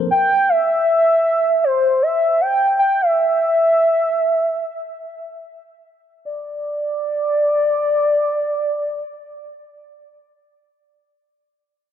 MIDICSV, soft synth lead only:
0, 0, Header, 1, 2, 480
1, 0, Start_track
1, 0, Tempo, 500000
1, 11444, End_track
2, 0, Start_track
2, 0, Title_t, "Soft synth lead"
2, 0, Program_c, 0, 80
2, 103, Note_on_c, 0, 79, 118
2, 470, Note_on_c, 0, 76, 118
2, 485, Note_off_c, 0, 79, 0
2, 1575, Note_on_c, 0, 72, 97
2, 1589, Note_off_c, 0, 76, 0
2, 1943, Note_on_c, 0, 76, 93
2, 1957, Note_off_c, 0, 72, 0
2, 2311, Note_on_c, 0, 79, 100
2, 2326, Note_off_c, 0, 76, 0
2, 2673, Note_off_c, 0, 79, 0
2, 2681, Note_on_c, 0, 79, 100
2, 2896, Note_on_c, 0, 76, 101
2, 2910, Note_off_c, 0, 79, 0
2, 5258, Note_off_c, 0, 76, 0
2, 6002, Note_on_c, 0, 74, 94
2, 9679, Note_off_c, 0, 74, 0
2, 11444, End_track
0, 0, End_of_file